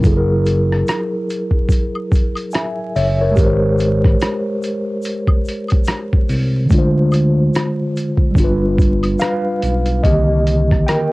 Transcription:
0.00 3.30 F#3 medium
0.00 3.32 E4 medium
0.00 kick loud
0.00 shaker medium
0.04 0.83 F#1 loud
0.04 3.34 G#4 medium
0.04 closed hi-hat medium
0.11 0.15 A4 medium
0.17 2.56 A#4 medium
0.46 closed hi-hat medium
0.46 shaker soft
0.73 cross-stick soft
0.88 cross-stick loud
0.88 closed hi-hat medium
0.88 shaker medium
1.30 closed hi-hat medium
1.30 shaker medium
1.51 kick medium
1.69 kick medium
1.69 closed hi-hat medium
1.69 shaker medium
1.95 high woodblock medium
2.12 kick loud
2.12 closed hi-hat medium
2.12 shaker soft
2.36 closed hi-hat soft
2.36 high woodblock medium
2.51 2.93 E5 medium
2.51 2.93 G#5 medium
2.51 cross-stick loud
2.51 closed hi-hat medium
2.51 shaker medium
2.96 3.34 F#1 loud
2.96 3.19 C#5 medium
2.96 3.19 E5 medium
2.96 open hi-hat soft
2.96 shaker soft
3.21 3.39 A#4 medium
3.21 3.60 C#5 medium
3.32 6.64 G#3 medium
3.36 4.17 G#1 medium
3.36 6.66 G4 medium
3.36 kick loud
3.36 closed hi-hat medium
3.36 shaker medium
3.40 6.68 A#4 medium
3.44 6.70 C5 medium
3.78 closed hi-hat medium
3.78 shaker soft
4.05 kick loud
4.05 cross-stick soft
4.20 cross-stick loud
4.20 closed hi-hat loud
4.20 shaker medium
4.63 closed hi-hat medium
4.63 shaker medium
5.02 closed hi-hat medium
5.02 shaker medium
5.27 kick medium
5.27 high woodblock medium
5.45 closed hi-hat medium
5.45 shaker medium
5.68 kick medium
5.68 closed hi-hat soft
5.68 high woodblock medium
5.84 cross-stick loud
5.84 closed hi-hat medium
5.84 shaker medium
6.13 kick medium
6.29 6.67 C2 medium
6.29 open hi-hat soft
6.29 shaker soft
6.65 8.31 D3 medium
6.69 7.50 D2 loud
6.69 8.33 G#3 medium
6.69 kick loud
6.69 closed hi-hat medium
6.69 shaker medium
6.74 8.35 F4 medium
6.78 8.38 C5 medium
7.12 closed hi-hat medium
7.12 high woodblock medium
7.12 shaker soft
7.54 cross-stick loud
7.54 closed hi-hat loud
7.54 shaker medium
7.97 closed hi-hat medium
7.97 shaker medium
8.17 kick medium
8.31 9.97 G3 medium
8.35 9.16 G1 loud
8.35 9.99 D4 medium
8.35 kick medium
8.35 closed hi-hat medium
8.35 shaker medium
8.40 10.02 F4 medium
8.44 9.20 B4 medium
8.78 kick loud
8.78 closed hi-hat medium
8.78 shaker soft
9.03 closed hi-hat soft
9.03 high woodblock medium
9.19 10.00 B4 medium
9.19 10.06 F5 loud
9.19 cross-stick loud
9.19 closed hi-hat medium
9.19 shaker medium
9.62 10.01 B1 medium
9.62 closed hi-hat medium
9.62 shaker soft
9.86 closed hi-hat medium
10.03 10.83 C2 medium
10.03 10.63 D3 medium
10.03 10.62 D#3 medium
10.03 10.63 A#3 soft
10.03 10.84 G4 medium
10.03 10.89 D#5 medium
10.03 kick medium
10.03 closed hi-hat medium
10.47 closed hi-hat medium
10.71 kick medium
10.71 cross-stick soft
10.86 11.12 A#4 medium
10.86 11.12 G5 loud
10.86 cross-stick loud
10.86 closed hi-hat loud

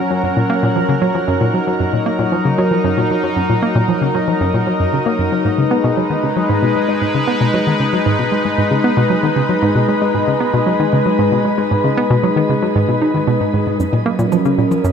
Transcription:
0.00 5.41 F#3 medium
0.00 1.24 C#4 medium
0.00 5.41 A#4 medium
0.11 0.14 F#3 medium
0.24 0.27 F#2 medium
0.37 0.43 A#2 medium
0.50 0.56 A#3 loud
0.63 0.69 A#2 medium
0.76 0.82 F3 medium
0.89 0.95 C#3 medium
1.02 1.11 F#3 medium
1.15 1.21 F3 medium
1.28 1.37 F#2 loud
1.28 13.76 D#4 medium
1.41 1.50 A#2 medium
1.54 1.60 F#3 medium
1.67 1.71 F#3 medium
1.80 1.84 F#2 medium
1.93 1.99 A#2 medium
2.06 2.12 A#3 loud
2.19 2.25 A#2 loud
2.32 2.38 F3 medium
2.45 2.51 C#3 medium
2.58 2.67 F#3 loud
2.71 2.77 F3 medium
2.84 2.93 F#2 loud
2.97 3.06 A#2 medium
3.11 3.17 F#3 medium
3.24 3.27 F#3 medium
3.37 3.40 F#2 medium
3.50 3.56 A#2 medium
3.63 3.69 A#3 medium
3.75 3.82 A#2 medium
3.88 3.95 F3 medium
4.01 4.08 C#3 medium
4.15 4.24 F#3 medium
4.28 4.34 F3 medium
4.41 4.50 F#2 medium
4.54 4.63 A#2 medium
4.67 4.71 F#3 medium
4.80 4.86 F#2 medium
4.93 4.99 C#3 medium
5.06 5.12 A#3 loud
5.19 5.28 F#2 medium
5.32 5.36 F#3 medium
5.45 5.49 G#2 medium
5.45 13.76 G#3 medium
5.45 13.76 B4 medium
5.58 5.64 C#3 medium
5.71 5.77 B3 medium
5.84 5.90 B2 loud
5.97 6.03 F#3 medium
6.10 6.16 D#3 medium
6.23 6.29 C#3 medium
6.36 6.42 F#3 medium
6.49 6.59 G#2 loud
6.63 6.72 B2 medium
6.76 6.82 G#3 medium
6.89 6.92 G#3 medium
7.02 7.05 G#2 medium
7.15 7.21 C#3 medium
7.28 7.34 B3 loud
7.41 7.47 B2 loud
7.54 7.60 F#3 medium
7.67 7.73 D#3 medium
7.80 7.86 C#3 medium
7.93 7.99 F#3 medium
8.06 8.15 G#2 medium
8.19 8.28 B2 medium
8.32 8.38 G#3 medium
8.45 8.49 G#3 medium
8.58 8.62 G#2 medium
8.71 8.77 C#3 medium
8.84 8.90 B3 loud
8.97 9.03 B2 loud
9.10 9.16 F#3 medium
9.23 9.29 D#3 medium
9.36 9.42 C#3 medium
9.49 9.55 F#3 medium
9.62 9.71 G#2 loud
9.75 9.85 B2 medium
9.89 9.95 G#3 medium
10.02 10.05 G#3 medium
10.15 10.18 G#2 medium
10.28 10.34 C#3 medium
10.40 10.47 B3 medium
10.54 10.60 B2 loud
10.66 10.73 F#3 medium
10.80 10.86 D#3 medium
10.93 10.99 C#3 medium
11.06 11.12 F#3 medium
11.19 11.28 G#2 loud
11.32 11.41 B2 medium
11.45 11.51 G#3 medium
11.58 11.62 G#3 medium
11.71 11.75 G#2 medium
11.84 11.90 C#3 medium
11.97 12.03 B3 loud
12.10 12.16 B2 loud
12.23 12.29 F#3 medium
12.36 12.42 D#3 medium
12.49 12.55 C#3 medium
12.62 12.69 F#3 medium
12.76 12.85 G#2 loud
12.88 12.98 B2 medium
13.02 13.11 D#4 medium
13.14 13.21 D#3 medium
13.27 13.37 B2 loud
13.40 13.47 G#2 medium
13.54 13.63 G#2 medium
13.67 13.76 G#2 medium
13.80 13.83 F#2 medium
13.80 14.92 F#3 medium
13.80 14.92 C#4 medium
13.80 14.92 A#4 medium
13.80 shaker medium
13.93 13.99 A#2 medium
13.93 percussion blips soft
14.06 14.12 A#3 loud
14.19 14.25 A#2 loud
14.19 shaker soft
14.32 14.38 F3 medium
14.32 percussion blips soft
14.32 shaker medium
14.45 14.51 C#3 medium
14.45 shaker soft
14.58 14.64 A#2 medium
14.71 14.77 F3 medium
14.71 percussion blips soft
14.71 shaker soft
14.84 14.92 F#2 loud
14.84 shaker medium

